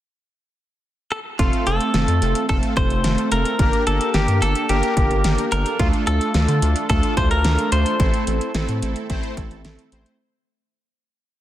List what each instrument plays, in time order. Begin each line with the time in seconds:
1.12 clean electric guitar A4
1.39 analog synth bass F1, analog polysynth A3 C4 F4 A4, clean electric guitar F4, kick, closed hi-hat
1.53 closed hi-hat
1.67 analog synth bass F1, analog polysynth A3 C4 F4 A4, clean electric guitar A4, closed hi-hat
1.81 closed hi-hat
1.94 analog synth bass F1, analog polysynth A3 C4 F4 A4, snare, closed hi-hat
2.08 analog synth bass F2, closed hi-hat
2.22 analog synth bass F1, analog polysynth A3 C4 F4 A4, closed hi-hat
2.35 closed hi-hat
2.49 analog synth bass F1, analog polysynth A3 C4 F4 A4, clean electric guitar A4, kick, closed hi-hat
2.63 closed hi-hat
2.77 analog synth bass F1, analog polysynth A3 C4 F4 A4, clean electric guitar C5, kick, closed hi-hat
2.90 analog synth bass F1, closed hi-hat
3.04 analog synth bass F1, analog polysynth A3 C4 F4 A4, snare, closed hi-hat
3.18 closed hi-hat
3.32 analog synth bass F1, analog polysynth A3 C4 F4 A4, clean electric guitar A#4, closed hi-hat
3.45 closed hi-hat
3.59 analog synth bass G1, analog polysynth A#3 D4 G4 A#4, kick, closed hi-hat
3.73 closed hi-hat
3.87 analog synth bass G1, analog polysynth A#3 D4 G4 A#4, clean electric guitar A4, closed hi-hat
4.01 closed hi-hat
4.14 analog synth bass G1, analog polysynth A#3 D4 G4 A#4, clean electric guitar G4, snare, closed hi-hat
4.28 analog synth bass G2, closed hi-hat
4.42 analog synth bass G1, analog polysynth A#3 D4 G4 A4, clean electric guitar A4, closed hi-hat
4.55 closed hi-hat
4.69 analog synth bass G1, analog polysynth A#3 D4 G4 A#4, clean electric guitar G4, closed hi-hat
4.83 closed hi-hat
4.97 analog synth bass G1, analog polysynth A#3 D4 G4 A#4, kick, closed hi-hat
5.11 analog synth bass G1, closed hi-hat
5.24 analog synth bass G1, analog polysynth A#3 D4 G4 A#4, snare, closed hi-hat
5.38 closed hi-hat
5.52 analog synth bass G1, analog polysynth A#3 D4 G4 A4, clean electric guitar A#4, closed hi-hat
5.66 closed hi-hat
5.79 analog synth bass D2, analog polysynth A3 D4 F4 A4, clean electric guitar F4, kick, closed hi-hat
5.93 closed hi-hat
6.07 analog synth bass D2, analog polysynth A3 D4 F4 A4, clean electric guitar A4, closed hi-hat
6.21 closed hi-hat
6.34 analog synth bass D2, analog polysynth A3 D4 F4 A4, snare, closed hi-hat
6.48 analog synth bass D3, closed hi-hat
6.62 analog synth bass D2, analog polysynth A3 D4 F4 A4, closed hi-hat
6.76 closed hi-hat
6.89 analog synth bass D2, analog polysynth A3 D4 F4 A4, clean electric guitar A4, kick, closed hi-hat
7.03 closed hi-hat
7.17 analog synth bass D2, analog polysynth A3 D4 F4 A4, clean electric guitar C5, kick, closed hi-hat
7.31 analog synth bass D2, clean electric guitar A#4, closed hi-hat
7.44 analog synth bass D2, analog polysynth A3 D4 F4 A4, snare, closed hi-hat
7.59 closed hi-hat
7.72 analog synth bass D2, analog polysynth A3 D4 F4 A4, clean electric guitar C5, closed hi-hat
7.86 closed hi-hat
8.00 analog synth bass A1, analog polysynth A3 C4 E4 A4, kick, closed hi-hat
8.14 closed hi-hat
8.27 analog synth bass A1, analog polysynth A3 C4 E4 A4, closed hi-hat
8.41 closed hi-hat
8.55 analog synth bass A1, analog polysynth A3 C4 E4 A4, snare, closed hi-hat
8.69 analog synth bass A2, closed hi-hat
8.82 analog synth bass A1, analog polysynth A3 C4 E4 A4, closed hi-hat
8.96 closed hi-hat
9.10 analog synth bass A1, analog polysynth A3 C4 E4 C5, kick, closed hi-hat
9.23 closed hi-hat
9.37 analog synth bass A1, analog polysynth A3 C4 E4 A4, kick, closed hi-hat
9.51 analog synth bass A1, closed hi-hat
9.65 analog synth bass A1, analog polysynth A3 C4 E4 A4, snare, closed hi-hat
9.79 closed hi-hat
9.92 analog synth bass A1, analog polysynth A3 C4 E4 C5, closed hi-hat
10.06 closed hi-hat